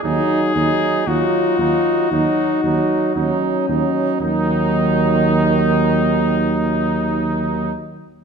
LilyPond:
<<
  \new Staff \with { instrumentName = "Cornet" } { \time 4/4 \key ees \minor \tempo 4 = 58 aes'4 ges'2~ ges'8 r8 | ees'1 | }
  \new Staff \with { instrumentName = "French horn" } { \time 4/4 \key ees \minor ees'4 f'4 ees'4 des'4 | ges1 | }
  \new Staff \with { instrumentName = "Trumpet" } { \time 4/4 \key ees \minor ees'8 ees'8 ees'8 ees'8 ees'8 ees'8 ees'8 ees'8 | ees'1 | }
  \new Staff \with { instrumentName = "Trombone" } { \clef bass \time 4/4 \key ees \minor ges8 ges8 ges8 ges8 ges8 ges8 ges8 ges8 | ees1 | }
  \new Staff \with { instrumentName = "Tuba" } { \clef bass \time 4/4 \key ees \minor ees,8 ees,8 ees,8 ees,8 ees,8 ees,8 ees,8 ees,8 | ees,1 | }
>>